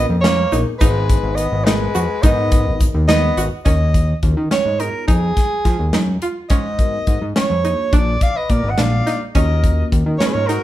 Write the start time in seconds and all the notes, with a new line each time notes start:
Already playing: A#3 C#4 F4 A#4
0.10 F2
0.21 A#3 C#4 C#5, snare, closed hi-hat
0.52 A#1 B3 D#4 G#4 A#4, closed hi-hat, shaker
0.78 G#1 G#3 B3 D#4 G#4 B4, kick, closed hi-hat, shaker
1.10 kick, closed hi-hat
1.23 G#1
1.35 B3 D#5, closed hi-hat, shaker
1.52 G#1
1.64 G#3 B3 D#4 G#4 A#4 B4, snare, closed hi-hat
1.95 F2 F#4, closed hi-hat, shaker
2.22 G#2 B3 D#4 G#4 A#4 D#5, kick, closed hi-hat, shaker
2.52 kick, closed hi-hat
2.66 G#1
2.81 kick, closed hi-hat, shaker
2.94 D#2
3.08 B3 D#4 G#4 B4 D#5, snare, closed hi-hat
3.37 G#1 F#4, closed hi-hat, shaker
3.65 D#2 C#4 D#5, kick, closed hi-hat
3.94 kick, closed hi-hat
4.23 D#2 C#4 F4 F#4 A#4, kick, closed hi-hat
4.37 D#3
4.51 C#4 C#5, snare, closed hi-hat
4.65 G#2
4.80 B3 D#4 F4 G#4 A#4, closed hi-hat
5.07 F2 B3 D#4 F4 G#4, kick, closed hi-hat
5.37 kick, snare, closed hi-hat
5.65 F3, kick, snare, closed hi-hat
5.79 D#2
5.93 F#2 D#4, snare, closed hi-hat
6.22 F4, closed hi-hat
6.49 G#2 C#4 D#5, kick, closed hi-hat
6.79 B3 D#4 F#4 A#4, kick, closed hi-hat
7.07 G#2, kick, closed hi-hat
7.22 G#2
7.36 C#4 C#5, snare, closed hi-hat
7.50 F2
7.64 A#3 D4 D#4 F4 G#4, closed hi-hat
7.92 A#1 A#3 D4 F4 G#4 D5, kick, closed hi-hat
8.21 D5 F5, kick, closed hi-hat
8.36 B4 D#5
8.49 A#2 A#4 D5, kick, closed hi-hat
8.64 G#1
8.70 D#5 F#5
8.78 A#1 A#3 D4 F4 G#4 D5 F5, snare, closed hi-hat
9.07 D#4, snare, closed hi-hat
9.35 D#2 A#3 C#4 F4 F#4 A#4 D#5, kick, closed hi-hat
9.64 kick, closed hi-hat
9.92 D#2, kick, closed hi-hat
10.06 D#3
10.18 A#3 C#4 F4 F#4 A#4 C#5, snare, closed hi-hat
10.26 G#4 B4
10.33 G#2 A#4 C#5
10.47 D#4 F#4 A#4, snare, closed hi-hat